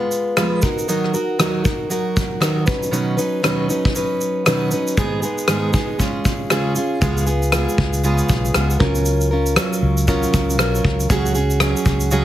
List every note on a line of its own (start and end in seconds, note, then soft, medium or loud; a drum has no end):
0.00 0.36 G#3 medium
0.00 0.36 B3 medium
0.00 0.36 F4 medium
0.00 0.37 B4 medium
0.12 shaker soft
0.37 0.63 F3 medium
0.37 0.63 G#3 medium
0.37 0.63 B3 medium
0.37 0.63 F4 medium
0.37 0.62 B4 medium
0.37 cross-stick loud
0.37 shaker medium
0.62 0.88 D#4 soft
0.62 0.88 F#4 medium
0.62 0.88 A#4 medium
0.62 kick medium
0.62 shaker medium
0.78 shaker soft
0.88 1.14 D#3 medium
0.88 1.14 F#3 medium
0.88 1.14 D#4 medium
0.88 1.14 F#4 medium
0.88 1.13 A#4 medium
0.88 shaker medium
1.04 cross-stick soft
1.14 1.38 D#4 soft
1.14 1.39 F#4 soft
1.14 1.39 A#4 medium
1.14 shaker soft
1.39 1.65 D#3 medium
1.39 1.65 F#3 medium
1.39 1.65 D#4 medium
1.39 1.64 F#4 medium
1.39 1.63 A#4 medium
1.39 cross-stick loud
1.39 shaker medium
1.64 1.89 D#4 soft
1.64 1.90 F#4 soft
1.64 1.90 A#4 soft
1.64 kick medium
1.64 shaker soft
1.90 2.41 F#3 medium
1.90 2.41 D#4 medium
1.90 2.42 F#4 medium
1.90 2.41 A#4 medium
1.90 shaker medium
2.17 kick medium
2.17 shaker soft
2.40 2.67 D#3 medium
2.40 2.67 F#3 medium
2.40 2.66 D#4 medium
2.40 2.66 F#4 medium
2.40 2.66 A#4 medium
2.40 cross-stick loud
2.40 shaker medium
2.66 2.91 F#3 soft
2.66 2.91 C#4 soft
2.66 2.91 D#4 medium
2.66 2.92 B4 medium
2.66 kick medium
2.66 shaker soft
2.83 shaker soft
2.91 3.18 B2 medium
2.91 3.18 D#3 medium
2.91 3.18 F#3 medium
2.91 3.18 C#4 medium
2.91 3.17 D#4 medium
2.91 3.16 B4 medium
2.91 shaker medium
3.17 3.42 F#3 soft
3.17 3.43 C#4 soft
3.17 3.43 D#4 soft
3.17 3.43 B4 medium
3.17 shaker soft
3.43 3.69 B2 medium
3.43 3.69 D#3 medium
3.43 3.69 F#3 medium
3.43 3.69 C#4 medium
3.43 3.68 D#4 medium
3.43 3.67 B4 medium
3.43 cross-stick loud
3.43 shaker medium
3.68 3.93 F#3 soft
3.68 3.94 C#4 soft
3.68 3.95 D#4 soft
3.68 3.95 B4 medium
3.68 shaker soft
3.85 kick medium
3.94 4.45 F#3 medium
3.94 4.45 C#4 medium
3.94 4.46 D#4 medium
3.94 4.46 B4 medium
3.94 shaker medium
4.21 shaker soft
4.46 4.72 B2 medium
4.46 4.72 D#3 medium
4.46 4.72 F#3 medium
4.46 4.72 C#4 medium
4.46 4.71 D#4 medium
4.46 4.70 B4 medium
4.46 cross-stick loud
4.46 shaker medium
4.71 4.97 F#3 soft
4.71 4.98 C#4 soft
4.71 4.97 D#4 soft
4.71 4.97 B4 soft
4.71 shaker medium
4.87 shaker soft
4.97 5.23 G#2 medium
4.97 5.23 D#3 medium
4.97 5.23 G#3 medium
4.97 5.22 B3 medium
4.97 5.22 D#4 medium
4.97 5.21 G#4 medium
4.97 kick medium
4.97 shaker medium
5.22 5.48 G#3 soft
5.22 5.48 B3 soft
5.22 5.48 D#4 soft
5.22 5.48 G#4 medium
5.22 shaker soft
5.38 shaker soft
5.48 5.74 G#2 medium
5.48 5.74 D#3 medium
5.48 5.74 G#3 medium
5.48 5.74 B3 medium
5.48 5.73 D#4 medium
5.48 5.72 G#4 medium
5.48 cross-stick loud
5.48 shaker medium
5.73 5.97 G#3 soft
5.73 5.99 B3 soft
5.73 6.00 D#4 soft
5.73 5.99 G#4 medium
5.73 kick medium
5.73 shaker soft
5.98 6.50 G#3 medium
5.98 6.50 C#4 medium
5.98 6.51 F4 medium
5.98 6.51 G#4 medium
5.98 kick medium
5.98 shaker medium
6.25 kick medium
6.25 shaker soft
6.50 6.76 C#3 medium
6.50 6.76 G#3 medium
6.50 6.76 C#4 medium
6.50 6.75 F4 medium
6.50 6.74 G#4 medium
6.50 cross-stick loud
6.50 shaker medium
6.75 7.02 C#4 soft
6.75 7.01 F4 soft
6.75 7.01 G#4 medium
6.75 shaker medium
7.01 7.65 C#2 loud
7.01 7.27 C#3 medium
7.01 7.27 G#3 medium
7.01 7.27 B3 medium
7.01 7.26 F4 medium
7.01 7.25 G#4 medium
7.01 kick loud
7.01 shaker medium
7.17 shaker soft
7.26 7.52 B3 soft
7.26 7.53 F4 soft
7.26 7.52 G#4 soft
7.26 shaker soft
7.42 shaker soft
7.52 8.03 G#3 medium
7.52 8.03 B3 medium
7.52 8.04 F4 medium
7.52 8.04 G#4 medium
7.52 cross-stick loud
7.52 shaker medium
7.69 shaker medium
7.78 8.20 C#2 medium
7.78 kick medium
7.93 shaker soft
8.04 8.55 C#3 medium
8.04 8.53 G#3 medium
8.04 8.54 B3 medium
8.04 8.55 F4 medium
8.04 8.55 G#4 medium
8.04 shaker medium
8.18 shaker soft
8.29 8.51 B1 medium
8.29 kick medium
8.29 shaker soft
8.45 shaker medium
8.54 8.76 C#2 medium
8.54 8.80 G#3 medium
8.54 8.80 B3 medium
8.54 8.79 F4 medium
8.54 8.79 G#4 medium
8.54 cross-stick loud
8.54 shaker medium
8.70 shaker soft
8.80 9.56 C#2 medium
8.80 9.32 C#3 medium
8.80 9.35 F#3 medium
8.80 9.33 C#4 medium
8.80 9.31 F4 medium
8.80 9.30 A#4 medium
8.80 kick medium
8.95 shaker soft
9.06 shaker medium
9.21 shaker soft
9.31 9.55 C#4 soft
9.31 9.56 F4 medium
9.31 9.57 A#4 medium
9.46 shaker soft
9.56 10.07 F#3 medium
9.56 10.08 C#4 medium
9.56 10.07 F4 medium
9.56 10.08 A#4 medium
9.56 cross-stick loud
9.56 shaker medium
9.73 shaker medium
9.82 10.24 C#2 medium
9.97 shaker soft
10.07 10.59 C#3 medium
10.07 10.58 F#3 medium
10.07 10.59 C#4 medium
10.07 10.59 F4 medium
10.07 10.59 A#4 medium
10.07 kick medium
10.07 shaker medium
10.23 shaker soft
10.34 10.58 C#2 medium
10.34 kick medium
10.34 shaker soft
10.50 shaker medium
10.58 10.79 B1 medium
10.58 11.10 F#3 medium
10.58 11.10 C#4 medium
10.58 11.10 F4 medium
10.58 11.10 A#4 medium
10.58 cross-stick loud
10.58 shaker medium
10.75 shaker soft
10.85 11.05 C#2 medium
10.85 kick medium
11.00 shaker soft
11.09 11.73 C#2 loud
11.09 11.35 C#3 medium
11.09 11.35 F#3 medium
11.09 11.36 C#4 medium
11.09 11.35 F#4 medium
11.09 11.33 G#4 medium
11.09 kick loud
11.09 shaker medium
11.26 shaker medium
11.35 11.60 C#4 soft
11.35 11.61 F#4 soft
11.35 11.60 G#4 medium
11.35 shaker soft
11.50 shaker soft
11.60 12.11 F#3 medium
11.60 12.12 C#4 medium
11.60 12.12 F#4 medium
11.60 12.13 G#4 medium
11.60 cross-stick loud
11.60 shaker medium
11.77 shaker medium
11.85 12.25 C#2 medium
11.85 kick medium
11.85 shaker soft
12.00 shaker soft
12.11 12.25 C#3 medium
12.11 12.25 F#3 medium
12.11 12.25 C#4 medium
12.11 12.25 F#4 medium
12.11 12.25 G#4 medium
12.11 shaker medium